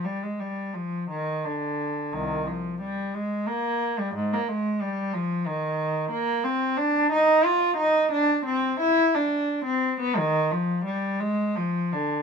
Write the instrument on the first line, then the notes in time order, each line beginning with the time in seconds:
cello
0.05 G3
0.23 G#3
0.39 G3
0.74 F3
1.10 D#3
1.45 D3
2.13 C2 D#3
2.47 F3
2.81 G3
3.14 G#3
3.47 A#3
3.99 G3
4.15 G#2
4.33 A#3
4.48 G#3
4.81 G3
5.13 F3
5.47 D#3
6.11 A#3
6.44 C4
6.77 D4
7.12 D#4
7.44 F4
7.77 D#4
8.12 D4
8.46 C4
8.80 E4
9.14 D4
9.65 C4
10.00 B3
10.17 D#3
10.51 F3
10.85 G3
11.20 G#3
11.55 F3
11.92 D3